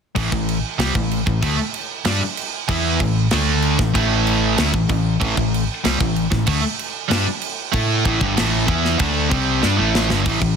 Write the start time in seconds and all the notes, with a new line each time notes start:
0.15 A1 A2 E3, kick, crash
0.31 A1 A2 E3, kick
0.49 crash
0.78 C2 C3 G3, snare, crash
0.95 A1 A2 E3, kick
1.11 crash
1.27 A1 A2 E3, kick
1.42 D2 D3 A3, kick, crash
1.58 muted overdriven electric guitar stroke, muted fingered electric bass stroke, muted distorted electric guitar stroke
1.74 crash
2.05 G2 G3 D4, snare, crash
2.21 muted fingered electric bass stroke, muted overdriven electric guitar stroke, muted distorted electric guitar stroke
2.37 crash
2.68 E2 E3 B3 E4, kick, crash
3.00 A1 A2 E3, kick, crash
3.31 D2 D3 A3 D4, snare, crash
3.62 crash
3.79 A1 A2 E3, kick, snare
3.94 A1 A2 E3 A3, kick, crash
4.27 crash
4.58 D2 D3 A3, snare, crash
4.74 A1 A2 E3, kick
4.89 A1 A2 E3, kick, crash
5.21 A1 A2 E3, kick, crash
5.37 A1 A2 E3, kick
5.54 crash
5.84 C2 C3 G3, snare, crash
6.00 A1 A2 E3, kick
6.16 crash
6.31 A1 A2 E3, kick, snare
6.47 D2 D3 A3, kick, crash
6.63 muted distorted electric guitar stroke, muted overdriven electric guitar stroke, muted fingered electric bass stroke
6.79 crash
7.10 G2 G3 D4, snare, crash
7.25 muted overdriven electric guitar stroke, muted fingered electric bass stroke, muted distorted electric guitar stroke
7.42 crash
7.73 A2 A3 E4 A4, kick, crash
8.05 A1 A2 E3, kick, crash
8.21 G1 G2 D3, kick
8.36 A1 A2 E3 A3, snare, crash
8.67 E2 E3 B3 E4, kick, crash
8.85 snare
8.99 D2 D3 A3 D4, kick, crash
9.30 C2 C3 G3 C4, kick, crash
9.62 G2 G3 D4, snare
9.77 A1 A2 E3 A3
9.95 snare
10.09 G1 G2 D3, snare
10.25 A1 A2 E3, kick, crash
10.41 A1 A2 E3, kick